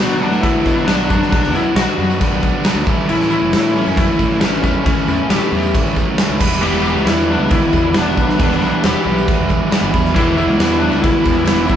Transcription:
Already playing: B2 F#4
0.00 B2 F#3 B3 D4 F#4
0.20 B3 D4 F#4, tambourine
0.31 A2, tambourine
0.41 E4, kick, crash
0.65 B2, kick, tambourine
0.85 B1 F#3 D4, snare, tambourine, crash
0.89 B3 D4 F#4
1.10 F#2 B3 D4 F#4, kick, tambourine
1.21 snare
1.31 B1 B2 F#3 B3 D4, kick, crash
1.35 D4 F#4
1.43 snare
1.54 F#2 D4 E4 F#4, tambourine
1.58 B3
1.75 B1 B2 F#3 B3 F#4, snare, tambourine, crash
1.79 D4 F#4
1.88 tambourine
1.98 F#2 D4 F#4, tambourine
2.03 B3
2.10 tambourine
2.21 kick, crash
2.32 B1
2.43 kick, tambourine
2.64 F#3 B3 D4, snare, tambourine, crash
2.68 F#4
2.75 D2, tambourine
2.86 A1 A2 E3 A3 C#4 E4, kick, tambourine
3.09 A1 A2 E3 A3 C#4 E4, crash
3.20 snare
3.30 C#4 E4, tambourine
3.34 A3
3.42 F#1
3.53 A2 E3 A3 C#4 E4, snare, tambourine, crash
3.74 A3 C#4 E4, tambourine
3.86 F#2, tambourine
3.97 E4, kick, crash
4.19 A2, kick, tambourine
4.40 A1 E3 A3 C#4 E4, snare, tambourine, crash
4.54 tambourine
4.61 E2 A3 C#4 E4, kick, tambourine
4.83 A1 A2 E3 A3 C#4 E4, kick, crash
4.87 tambourine
4.98 tambourine
5.06 E2 A3 C#4 E4, tambourine
5.29 A1 A2 E3 A3 C#4 E4 G4, snare, tambourine, crash
5.52 E2 A3 C#4 E4
5.63 tambourine
5.75 kick, crash
5.85 A1
5.96 kick, tambourine
6.08 tambourine
6.18 E3 A3 C#4 E4, snare, tambourine, crash
6.29 C#2, tambourine
6.40 E1 E3 G3 B3 E4, kick, tambourine, crash
6.52 snare
6.61 E1 E2 B2 E3 G3 B3 G4, crash
6.66 E4
6.74 snare
6.84 B3 E4 G4, tambourine
6.88 G3
6.95 C#2
7.06 E2 E3 G3 B3 E4, snare, tambourine, crash
7.29 G3 B3 D4 E4, tambourine
7.39 C#2
7.50 E4, kick, crash
7.72 E2, kick, tambourine
7.94 E1 E3 G3 B3 D4 E4, snare, tambourine, crash
8.17 B1 G3 B3 E4, kick, tambourine
8.29 snare
8.38 E1 E2 B2 E3 G3 B3 D4 E4, kick, crash
8.51 snare
8.60 B1 G3 B3 E4, tambourine
8.82 E1 E3 G3 B3 E4, snare, tambourine, crash
8.86 G4
9.05 B1 G3 B3 E4, tambourine
9.18 tambourine
9.28 kick, crash
9.39 E1
9.49 kick, tambourine
9.71 E3 G3 B3 E4, snare, tambourine, crash
9.82 G1, tambourine
9.92 E2 G3 B3 E4, kick, tambourine
10.05 snare
10.15 E1 E2 B2 E3 G3 B3 E4, kick, crash
10.19 E4
10.36 G3 B3 E4, tambourine
10.48 C#2
10.58 E2 E3 G3 B3 E4, snare, tambourine, crash
10.70 tambourine
10.79 B3 D4 E4, tambourine
10.83 G3
10.91 C#2, tambourine
11.02 E4, kick, crash
11.24 E2, kick, tambourine
11.45 E1 E3 G3 E4, snare, tambourine, crash
11.49 B3 E4
11.67 B1 B3 E4, kick, tambourine
11.71 G3

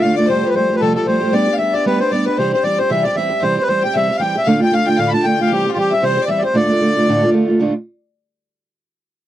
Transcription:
0.01 D3 A3 D4 F4 F5
0.15 A3 D4 F4 D5
0.20 D3 D5
0.26 F2 C3 F3 G3 A3 C5
0.30 G4
0.43 F3 G3 A3 G4 B4
0.49 B4 C5
0.54 F3 G3 A3 G4 C5
0.70 F3 G3 A3 G4 B4
0.76 A4 B4
0.81 F2 C3 F3 G3 A3 G4 A4
0.95 F3 G3 A3 G4 A4
1.05 F3 G3 A3 G4 C5
1.21 F3 G3 A3 G4
1.32 G3 B3 D4 G4 D5
1.47 B3 D4 G4
1.53 F5
1.58 G3 B3 D4 E5
1.62 G4
1.73 B3 D4 G4 D5
1.85 G3 B3 D4 G4 B4
2.00 B3 D4 G4 C5
2.11 G3 B3 D4 G4 D5
2.25 D4 G4 B4
2.30 B3
2.37 C3 E3 G3 C4 G4 C5
2.53 G3 C4 G4 C5
2.63 E3 G3 C4 G4 D5
2.78 G3 C4 G4 C5
2.90 C3 E3 G3 C4 G4 E5
3.03 G3 C4 G4 D5
3.15 E3 G3 C4 G4 E5
3.30 G3 C4 G4
3.40 C3 E3 G3 C4 G4 C5
3.57 G3 C4 G4
3.61 B4
3.67 E3 G3 C4 C5
3.71 G4
3.82 C4 G4 G5
3.87 G3
3.93 C3 E3 G3 C4 G4 E5
4.08 G3 C4 G4
4.13 F5
4.19 E3 G3 C4 G4 G5
4.35 G3 C4 G4 E5
4.44 D2 A2 D3 A3 F5
4.48 D4 F4
4.60 D3 A3 D4 F4 G5
4.71 D3 A3 D4 F4 F5
4.86 D3 A3 D4 F4 G5
4.97 D2 A2 D3 A3 D4 F4 F5
5.08 A5 B5
5.12 D3 A3 D4 F4 A5
5.22 D3 A3 D4 G5
5.27 F4
5.38 D3 A3 D4 F4 F5
5.48 C3 E3 G4
5.52 G3 C4 G4
5.65 G3 C4 F4 G4
5.72 E3 F4 G4
5.77 G3 C4 G4
5.90 C4 G4 E5
5.94 G3
6.02 C3 E3 G3 C4 G4 C5
6.17 G3 C4 G4
6.22 D5
6.28 E3 G3 C4 G4 E5
6.39 D5
6.43 G3 C4 G4 C5
6.53 D2 A2 D3 A3 D4 F4 D5
6.69 D3 A3 D4 F4
6.80 D3 A3 D4 F4
6.96 D3 A3 D4 F4
7.08 D2 A2 D3 A3 D4 F4
7.23 D3 A3 D4 F4
7.33 D3 A3 D4 F4
7.47 D3 A3 D4 F4
7.60 D2 A2 D3 A3 D4 F4

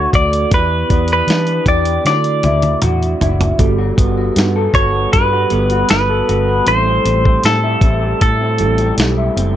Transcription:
Already playing: D3 A3 D4 F#4 A4
0.13 D2 D5, kick, closed hi-hat
0.33 closed hi-hat
0.50 E2 E3 B3 E4 G4 D5, kick, closed hi-hat
0.54 B4
0.89 E2 B3 E4 G4 D5, kick, closed hi-hat
1.08 closed hi-hat
1.13 B4
1.27 E3 D4, snare, closed hi-hat
1.47 closed hi-hat
1.66 E2 B3 E4 G4 D5, kick, closed hi-hat
1.85 closed hi-hat
2.05 D3 A3 E4 F#4 C#5 D5, snare, closed hi-hat
2.13 D5
2.24 closed hi-hat
2.43 D2 E4, closed hi-hat, high tom
2.62 closed hi-hat, high tom
2.82 E2 F#4, closed hi-hat, mid tom
3.03 closed hi-hat
3.21 F#1 E4, closed hi-hat, floor tom
3.41 closed hi-hat, floor tom
3.58 G1 G3 B3 F#4 A4, kick, closed hi-hat
3.78 F#4
3.98 G1 B3, kick, closed hi-hat
4.18 F#4
4.36 G2 B3, snare, closed hi-hat
4.56 A4
4.74 G1 F#4 C#5, kick, closed hi-hat
4.93 B3
5.12 G2 G3 B4, kick, closed hi-hat
5.33 F#4
5.50 G1 G3 B3 F#4 A4, closed hi-hat
5.70 F#4, closed hi-hat
5.89 G1 B3 B4, snare, closed hi-hat
6.09 A4
6.29 G1 F#4, closed hi-hat
6.48 B3
6.65 A1 A2 G3 B3 E4 A4 C5, closed hi-hat
6.73 C4
6.86 C4
7.05 A1 G3, closed hi-hat
7.25 C4, kick
7.43 A2 G3 A4, snare, closed hi-hat
7.64 E4
7.81 A1 C4, kick, closed hi-hat
8.03 G3
8.21 A2 A4, kick, closed hi-hat
8.41 C4
8.58 A1 G3 B3 E4 A4, closed hi-hat
8.66 C4
8.78 C4, closed hi-hat
8.98 B1 G3, snare, closed hi-hat
9.17 E4
9.36 F#1 C4, closed hi-hat

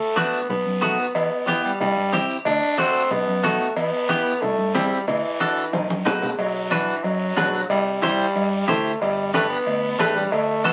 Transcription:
Already playing: A3
0.16 A3 B3 D4 F#4, high conga, short guiro
0.33 short guiro
0.49 B1 B3, high conga, low conga, long guiro
0.66 F#2
0.81 B1 A3 B3 D#4 F#4, high conga, short guiro
0.99 B3, short guiro
1.15 E2 B3, cowbell, high conga, long guiro
1.47 B3 E4 G4, cowbell, high conga, short guiro
1.64 G3, short guiro
1.80 C2 G3, cowbell, high conga, low conga, long guiro
1.97 G2
2.12 C2 C4 E4 G4, cowbell, high conga, short guiro
2.29 short guiro
2.45 D2 D4, cowbell, high conga, low conga, long guiro
2.78 A3 C4 D4 F#4, cowbell, high conga, short guiro
2.94 short guiro
3.10 B1 B3, cowbell, high conga, low conga, long guiro
3.28 F#2
3.43 B1 A3 B3 D#4 F#4, cowbell, high conga, short guiro
3.60 short guiro
3.76 E2 B3, cowbell, high conga, long guiro
4.09 B3 E4 G4, cowbell, high conga, short guiro
4.26 short guiro
4.42 C2 A3, cowbell, high conga, low conga, long guiro
4.58 G2
4.75 C2 G3 C4 E4 G4, cowbell, high conga, low timbale, short guiro
4.92 short guiro
5.07 D2 E3, cowbell, high conga, low conga, long guiro
5.40 D4 F#4 A4, cowbell, high conga, short guiro
5.56 short guiro
5.73 B1 D#3, cowbell, high conga, high timbale, long guiro
5.89 F#2, high conga
6.05 B1 D#3 D#4 F#4 B4, cowbell, low conga, low timbale, short guiro
6.22 low conga, low timbale, short guiro
6.38 B1 F#3, cowbell, long guiro
6.71 E3 D4 F#4 B4, cowbell, high conga, short guiro
6.88 short guiro
7.04 F#2 F#3, cowbell, long guiro
7.37 B1 D4 F#4 B4, cowbell, high conga, low timbale, short guiro
7.53 short guiro
7.70 C2 G3, cowbell, long guiro
8.02 G3 E4 G4 C5, cowbell, high conga, short guiro
8.19 short guiro
8.35 G2, cowbell, long guiro
8.68 D2 A3 E4 G4 C5, cowbell, high conga, low conga, short guiro
8.85 short guiro
9.01 G1 G3, cowbell, long guiro
9.34 A3 D4 G4 B4, cowbell, high conga, short guiro
9.50 B3, short guiro
9.67 D2, cowbell, long guiro
9.99 A1 A3 D4 G4 B4, cowbell, high conga, low timbale, short guiro
10.16 G3, short guiro
10.32 D2 A3, cowbell, long guiro
10.64 B3 D4 F#4 A4, cowbell, high conga, short guiro

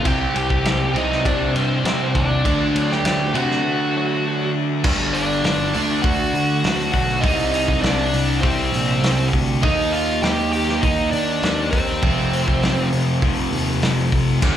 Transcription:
0.04 C2 C3 G3 C4 G4 G5, kick, ride
0.34 C2 G3 G4 G5, ride
0.50 kick
0.65 C2 C4, snare, ride
0.94 C2 C3 G3 C4 D#4 D#5, ride
1.12 snare
1.25 C2 C4 D4 D5, kick, ride
1.55 G2 G3 C4 C5, ride
1.84 C3 C4, snare, ride
2.15 D#2 C3 D4 D5, kick, ride
2.44 D2 D3 A3 D4, kick, ride
2.74 D2 F#3, ride
2.91 G4 G5, snare
3.04 D2 A3, snare, ride
3.33 C3 D3 A3 D4 F#4 F#5, ride
3.51 snare
3.64 A3
3.94 F#3
4.24 A3
4.54 D3
4.84 G1 G2 D3 G3, kick, crash
5.14 D4 D5, open hi-hat
5.44 G1, snare, open hi-hat
5.74 D2 D3 A3 D4, open hi-hat
6.02 D2 F#4 F#5, kick, open hi-hat
6.33 D3, open hi-hat
6.64 D2, snare, open hi-hat
6.92 B1 D3 A3 D4 F#4 F#5, kick, open hi-hat
7.21 C2 C3 G3 D#4 D#5, kick, open hi-hat
7.25 C4
7.51 D#4 D#5, open hi-hat
7.68 kick
7.82 C2 D4 D5, snare, open hi-hat
8.13 C2, open hi-hat
8.41 C2 C3 G3 C4 C5, kick, open hi-hat
8.45 C4
8.72 A#1, open hi-hat
9.02 C2, snare, open hi-hat
9.33 D2, kick, open hi-hat
9.62 D#2 D#3 A#3 D#4 D#5, kick, open hi-hat
9.92 F4 F5, open hi-hat
10.22 D#2 G4 G5, snare, open hi-hat
10.52 G4 G5, open hi-hat
10.69 snare
10.81 D#2 D#3 A#3 D#4 D#5, kick, open hi-hat
11.11 D#3 D4 D5, open hi-hat
11.42 D#2, snare, open hi-hat
11.71 D#2 C4 C5, kick, open hi-hat
12.02 F1 F2 C3 F3, kick, open hi-hat
12.33 open hi-hat
12.48 kick
12.61 F1, snare, open hi-hat
12.92 F1, open hi-hat
13.22 F1 F2 C3 F3, kick, open hi-hat
13.51 D#2, open hi-hat
13.82 F1, snare, open hi-hat
14.12 F1, kick, open hi-hat
14.42 G1 G2 D3 G3, kick, crash

